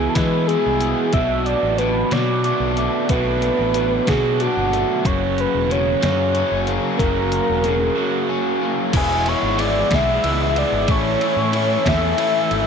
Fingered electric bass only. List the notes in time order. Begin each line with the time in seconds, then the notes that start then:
0.15 E3
0.66 C2
1.14 B1
1.63 A1
2.12 B2
2.60 B1
3.10 B1
3.59 A1
4.08 B2
4.57 G1
5.05 F#1
5.55 E1
6.03 F#2
6.51 F#1
7.00 F#1
7.49 E1
8.94 E1
9.43 G#1
9.91 B1
10.24 C#2
10.72 G#1
10.88 A1
11.36 A2
11.86 E2
12.51 G#1